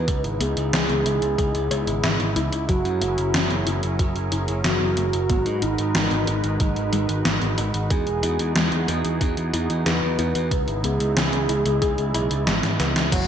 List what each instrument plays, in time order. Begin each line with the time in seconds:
Already playing: analog synth pad D#4, soft synth lead B4
0.08 picked electric bass C#2, analog synth pad C#3 G#3 B3 E4, synth arpeggio sound G#3, kick, closed hi-hat
0.24 picked electric bass G#1, closed hi-hat
0.41 picked electric bass C#2, synth arpeggio sound B3, soft synth lead G#4, closed hi-hat
0.57 picked electric bass C#2, closed hi-hat
0.73 picked electric bass C#2, synth arpeggio sound C#4, snare, closed hi-hat
0.89 picked electric bass C#2, closed hi-hat
1.06 picked electric bass C#2, synth arpeggio sound E4, closed hi-hat
1.22 picked electric bass C#2, closed hi-hat
1.38 picked electric bass C#2, synth arpeggio sound G#4, kick, closed hi-hat
1.54 picked electric bass C#2, closed hi-hat
1.71 picked electric bass C#2, synth arpeggio sound C#5, closed hi-hat
1.87 picked electric bass G#1, closed hi-hat
2.03 picked electric bass G#1, synth arpeggio sound E4, snare, closed hi-hat
2.20 picked electric bass G#1, closed hi-hat
2.36 picked electric bass C#2, synth arpeggio sound E4, closed hi-hat
2.52 picked electric bass C#2, closed hi-hat
2.69 picked electric bass F#1, synth arpeggio sound F#3, analog synth pad F#3 C#4 G#4 A#4, soft synth lead F#4, kick, closed hi-hat
2.85 picked electric bass F#2, closed hi-hat
3.01 picked electric bass F#1, synth arpeggio sound A#3, closed hi-hat
3.18 picked electric bass F#1, closed hi-hat
3.34 picked electric bass F#1, synth arpeggio sound C#4, snare, closed hi-hat
3.50 picked electric bass F#1, closed hi-hat
3.67 picked electric bass F#1, synth arpeggio sound E4, closed hi-hat
3.83 picked electric bass F#1, closed hi-hat
3.99 picked electric bass F#1, synth arpeggio sound F#4, kick, closed hi-hat
4.15 picked electric bass F#1, closed hi-hat
4.32 picked electric bass F#1, synth arpeggio sound E4, closed hi-hat
4.48 picked electric bass F#1, closed hi-hat
4.64 picked electric bass F#1, synth arpeggio sound F#3, soft synth lead F#4, snare, closed hi-hat
4.81 picked electric bass F#1
4.97 picked electric bass F#1, synth arpeggio sound A#3, closed hi-hat
5.13 picked electric bass F#1, closed hi-hat
5.30 picked electric bass G#1, analog synth pad G#3 D#4 F#4 B4, synth arpeggio sound B3, kick, closed hi-hat
5.46 picked electric bass G#2, closed hi-hat
5.62 picked electric bass G#1, soft synth lead D#4, synth arpeggio sound D#4, closed hi-hat
5.78 picked electric bass G#1, closed hi-hat
5.95 picked electric bass G#1, synth arpeggio sound F#4, snare, closed hi-hat
6.11 picked electric bass G#1, closed hi-hat
6.27 picked electric bass G#1, synth arpeggio sound D#4, closed hi-hat
6.44 picked electric bass G#1, closed hi-hat
6.60 picked electric bass G#1, synth arpeggio sound F#3, kick, closed hi-hat
6.76 picked electric bass G#1, closed hi-hat
6.93 picked electric bass G#1, synth arpeggio sound G#3, closed hi-hat
7.09 picked electric bass G#1, closed hi-hat
7.25 picked electric bass G#1, synth arpeggio sound B3, snare, closed hi-hat
7.42 picked electric bass G#1, closed hi-hat
7.58 picked electric bass G#1, synth arpeggio sound D#4, closed hi-hat
7.74 picked electric bass G#1, closed hi-hat
7.90 picked electric bass E2, analog synth pad E3 B3 G#4, synth arpeggio sound G#4, soft synth lead G#4, kick, closed hi-hat
8.07 picked electric bass E1, closed hi-hat
8.23 picked electric bass E2, synth arpeggio sound E4, closed hi-hat
8.39 picked electric bass E2, closed hi-hat
8.56 picked electric bass E2, synth arpeggio sound G#3, snare, closed hi-hat
8.72 picked electric bass E2, closed hi-hat
8.88 picked electric bass E2, synth arpeggio sound B3, closed hi-hat
9.05 picked electric bass E2, closed hi-hat
9.21 picked electric bass E2, synth arpeggio sound D#4, kick, closed hi-hat
9.37 picked electric bass E2, closed hi-hat
9.53 picked electric bass E2, synth arpeggio sound E4, closed hi-hat
9.70 picked electric bass E2, closed hi-hat
9.86 picked electric bass E2, synth arpeggio sound G#4, soft synth lead B4, snare, closed hi-hat
10.03 picked electric bass E2
10.19 picked electric bass E2, synth arpeggio sound E4, closed hi-hat
10.35 picked electric bass E2, closed hi-hat
10.51 picked electric bass C#2, analog synth pad C#3 G#3 E4, synth arpeggio sound G#3, kick, closed hi-hat
10.68 picked electric bass G#1, closed hi-hat
10.84 picked electric bass C#2, synth arpeggio sound B3, soft synth lead G#4, closed hi-hat
11.00 picked electric bass C#2, closed hi-hat
11.17 picked electric bass C#2, synth arpeggio sound C#4, snare, closed hi-hat
11.33 picked electric bass C#2, closed hi-hat
11.49 picked electric bass C#2, synth arpeggio sound E4, closed hi-hat
11.65 picked electric bass C#2, closed hi-hat
11.82 picked electric bass C#2, synth arpeggio sound G#4, kick, closed hi-hat
11.98 picked electric bass C#2, closed hi-hat
12.14 picked electric bass B1, synth arpeggio sound E4, closed hi-hat
12.31 picked electric bass C#2, closed hi-hat
12.47 picked electric bass G#1, synth arpeggio sound G#3, snare, closed hi-hat
12.63 picked electric bass G#1, snare, closed hi-hat
12.80 picked electric bass C#2, synth arpeggio sound B3, snare, closed hi-hat
12.96 picked electric bass C#2, snare, closed hi-hat
13.12 picked electric bass F#1, synth arpeggio sound F#3, analog synth pad F#3 C#4 E4 G#4 A#4, soft synth lead F#4, kick, closed hi-hat, crash